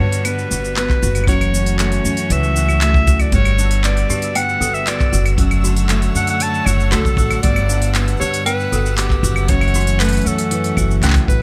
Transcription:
Already playing: D3 G3 B3 F#4
0.00 G2 D4 C#5
0.12 open hi-hat, cabasa
0.25 B3 B4, open hi-hat, cabasa, claves
0.38 cabasa
0.51 G1 F#4, cabasa
0.65 cabasa
0.77 B3 B4, clap, cabasa
0.90 kick, clap, cabasa
1.03 F#1 F#4, cabasa
1.15 open hi-hat, cabasa, claves
1.24 E3 C#4, kick, claves
1.28 F#2 A3 F#4 C#5, open hi-hat, cabasa
1.33 claves
1.41 open hi-hat, cabasa, claves
1.54 C#4, cabasa
1.66 open hi-hat, cabasa
1.79 A3 C#5, clap, open hi-hat, cabasa
1.92 open hi-hat, cabasa
2.05 F#2 C#4, cabasa
2.17 open hi-hat, cabasa
2.30 C#2 E3 E5, open hi-hat, cabasa
2.44 cabasa
2.56 F#4, cabasa
2.69 cabasa, claves
2.81 A3 E5, clap, open hi-hat, cabasa
2.94 kick, cabasa
3.07 F#4, kick, cabasa
3.20 D5, open hi-hat, cabasa, claves
3.32 G1 D3 G3 B3 F#4 C#5 E6, kick, open hi-hat, cabasa
3.45 open hi-hat, cabasa, claves
3.58 D4, cabasa
3.71 open hi-hat, cabasa
3.84 B3 D5, clap, open hi-hat, cabasa
3.97 open hi-hat, cabasa
4.10 G2 D4 G4, cabasa
4.22 open hi-hat, cabasa
4.35 B3 F#5 G5, open hi-hat, cabasa, claves
4.49 cabasa
4.60 G1 F#4 A4, cabasa
4.74 E5, cabasa
4.87 B3 D5, clap, open hi-hat, cabasa
5.00 kick, clap, cabasa
5.12 F#1 F#4, cabasa
5.26 open hi-hat, cabasa, claves
5.38 F#2 A3 F#4 C#5 F#5, kick, open hi-hat, cabasa
5.51 open hi-hat, cabasa, claves
5.64 D4 F#4, cabasa
5.76 open hi-hat, cabasa
5.89 A3, clap, open hi-hat, cabasa
6.02 open hi-hat, cabasa
6.15 F#2 D4 F#5, cabasa
6.27 F#5, open hi-hat, cabasa
6.40 F#3 A5, open hi-hat, cabasa
6.54 cabasa
6.66 F#1 F#4 C#5, cabasa, claves
6.80 cabasa
6.92 C#2 A3 F#4 A4, clap, open hi-hat
7.05 kick, cabasa
7.17 A1 F#4, kick, cabasa
7.31 open hi-hat, cabasa, claves
7.43 G1 G3 B3 F#4 D5, kick, open hi-hat, cabasa
7.56 open hi-hat, cabasa, claves
7.70 D4, cabasa
7.82 open hi-hat, cabasa
7.95 B3, clap, open hi-hat, cabasa
8.08 open hi-hat, cabasa
8.17 G2 D4 G4 C#5, cabasa
8.21 cabasa
8.26 cabasa
8.34 open hi-hat, cabasa
8.46 B3 B4 G5, open hi-hat, cabasa, claves
8.60 cabasa
8.72 G1 F#4 A4, cabasa
8.86 cabasa
8.97 B3 G4, clap, open hi-hat, cabasa
9.10 kick, clap, cabasa
9.23 F#1 F#4, cabasa
9.36 cabasa, claves
9.48 F#2 E3 A3 C#4 F#4 C#5, kick, open hi-hat, cabasa
9.61 open hi-hat, cabasa, claves
9.68 open hi-hat
9.74 C#4 F#4, open hi-hat, cabasa
9.80 open hi-hat
9.87 open hi-hat, cabasa
10.00 A3 B4, clap, open hi-hat, cabasa
10.04 open hi-hat
10.08 open hi-hat
10.13 open hi-hat, cabasa
10.17 open hi-hat
10.21 open hi-hat
10.26 F#2 C#4 A4, cabasa
10.38 open hi-hat, cabasa
10.51 E3, open hi-hat
10.64 open hi-hat, cabasa
10.77 F#1 F#4, kick, cabasa, claves
10.91 cabasa
11.02 C#2 A3 C#4, clap, open hi-hat, cabasa
11.05 clap
11.08 clap
11.10 clap
11.13 kick, clap, open hi-hat, cabasa
11.28 A1 F#4 B4, kick, cabasa

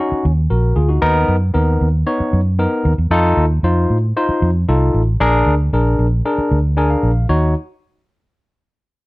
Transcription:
Already playing: C#4
0.00 D#4 F#4
0.12 muted fingered electric bass stroke
0.25 D#2
0.50 A#1 F#4 A#4
0.76 D2 F4 G#4
0.89 D#4 F#4
1.02 D#2 B3 D#4 A#4
1.28 F#2
1.54 D#2 B3 D#4 A#4
1.81 D#2
2.06 B3 D#4 C#5
2.20 muted fingered electric bass stroke
2.33 F#2
2.59 B3 D#4 A#4
2.85 D#2
2.98 E2
3.11 F2 D#4 F4 A4
3.37 D#2
3.63 F2 D#4 F4 C5
3.90 A2
4.17 D#4 F4 C5
4.29 muted fingered electric bass stroke
4.42 F2
4.69 C2 D#4 F4 A4
4.94 A1
5.20 A#1 D4 G#4 A#4
5.46 D2
5.73 A#1 D4 G#4 A#4
5.99 A#1
6.25 D4 G#4 A#4
6.38 muted fingered electric bass stroke
6.51 D2
6.77 D4 G#4 A#4 G#5
6.90 F5
7.03 A#1
7.29 D#2 D#4 F#4 C#5

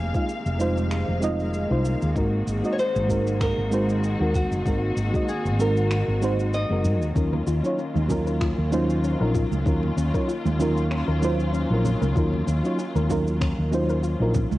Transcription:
Already playing: F1 C3 D#3 G#3 A#3 G#4 F5
0.13 G#3 C4 D#4 F4 F5, kick, cabasa
0.29 cabasa
0.46 F1, cabasa
0.58 G#3 C4 D#4 F4 C5, cabasa
0.77 cabasa
0.91 finger snap, cabasa
1.08 F1
1.21 G#3 C4 D#4 F4 D#5, cabasa
1.40 cabasa
1.54 cabasa
1.69 C2 G#3 C4 D#4 F4 C5
1.85 cabasa
2.02 D#2, cabasa
2.15 G#1 G#3 C4 D#4 F#4 A#4, kick, cabasa
2.47 G#1, cabasa
2.62 G#3 C4 D#4 F#4 D#5, cabasa
2.73 C#5
2.79 C5, cabasa
2.96 G#1, cabasa
3.08 G#3 C4 D#4 F#4 A#4, kick, cabasa
3.27 cabasa
3.41 A#4, finger snap, kick, cabasa
3.58 G#1
3.71 G#3 C4 D#4 F#4 C5, cabasa
3.89 cabasa
4.04 cabasa
4.19 D#2 G#3 C4 D#4 F#4 A#4
4.35 F#4, kick, cabasa
4.51 F#1, cabasa
4.65 G#1 G#3 C4 D#4 F#4 A#4, kick, cabasa
4.97 G#1, cabasa
5.13 G#3 C4 D#4 F#4 D#5, kick, cabasa
5.29 G#4, cabasa
5.45 G#1, cabasa
5.59 G#3 C4 D#4 F#4 A#4, cabasa
5.77 cabasa
5.91 finger snap, cabasa
6.08 G#1
6.21 G#3 C4 D#4 F#4 C5, cabasa
6.39 cabasa
6.53 D#5, cabasa
6.69 F#1 G#3 C4 D#4 F#4 A#4
6.84 G#2, cabasa
7.02 D#2, cabasa
7.14 D#2 F#3 A#3 C#4 D#4 F4 A#4, kick, cabasa
7.33 A#4, low conga
7.47 D#2 F4, cabasa
7.63 F#3 C#4 D#4 F4 C#5, cabasa
7.78 C#4, cabasa
7.95 D#2, high conga, cabasa
8.08 F#3 C#4 D#4 F4 A#4, kick, low conga, cabasa
8.27 A#4, cabasa
8.41 F4, finger snap, kick, cabasa
8.58 D#2
8.70 F#3 C#4 D#4 F4 C5, high conga, cabasa
8.90 cabasa
9.04 C#4, cabasa
9.20 A#1 F#3 C#4 D#4 F4 A#4
9.35 F4, kick, low conga, cabasa
9.51 C#2, high conga, cabasa
9.65 D#2 F#3 C#4 D#4 F4 A#4, kick, cabasa
9.83 low conga
9.97 D#2 C#4, cabasa
10.13 F#3 C#4 D#4 F4 A#4 C#5, kick, cabasa
10.28 F4, cabasa
10.45 D#2, high conga, cabasa
10.59 F#3 C#4 D#4 F4 A#4, low conga, cabasa
10.77 cabasa
10.91 C#4, finger snap, cabasa
11.08 D#2 A#4
11.22 F#3 C#4 D#4 F4 C5, high conga, cabasa
11.40 cabasa
11.53 C#4, cabasa
11.70 A#1 F#3 C#4 D#4 F4 A#4
11.84 C#4, low conga, cabasa
12.01 C#2 A#4, high conga, cabasa
12.15 D#2 F#3 C#4 D#4 F4 A#4, kick, cabasa
12.34 low conga
12.47 D#2 C#4, cabasa
12.63 F#3 C#4 D#4 F4 C#5, cabasa
12.78 C#4, cabasa
12.95 D#2 A#4, high conga, cabasa
13.09 F#3 C#4 D#4 F4 A#4, kick, low conga, cabasa
13.27 cabasa
13.41 C#4, finger snap, kick, cabasa
13.58 D#2
13.71 F#3 C#4 D#4 F4 C5, high conga, cabasa
13.89 A#4, cabasa
14.03 F4, cabasa
14.20 A#1 F#3 C#4 D#4 F4 A#4
14.35 C#4, kick, low conga, cabasa
14.52 C#2, high conga, cabasa

